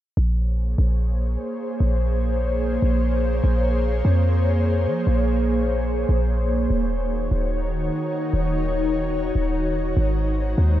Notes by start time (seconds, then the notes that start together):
0.17 A#1 A#3 G#4 C5 C#5
0.78 A#1
1.80 A#1
2.82 A#1
3.44 A#1
4.05 F2
4.87 F3
5.07 A#1
6.09 A#1
6.70 D#1 D#3 D#4 F#4 C#5
7.31 D#1
8.33 D#1
9.35 D#1
9.97 G#1 G#3 D#4 C5
10.58 D#2